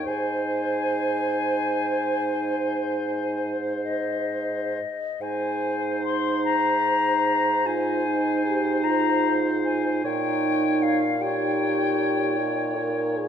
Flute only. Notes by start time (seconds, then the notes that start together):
0.07 G#5
3.83 D#5
5.21 G#5
6.04 C6
6.45 A#5
7.66 G#5
8.84 A#5
9.64 G#5
10.06 G5
10.82 F5
11.21 G5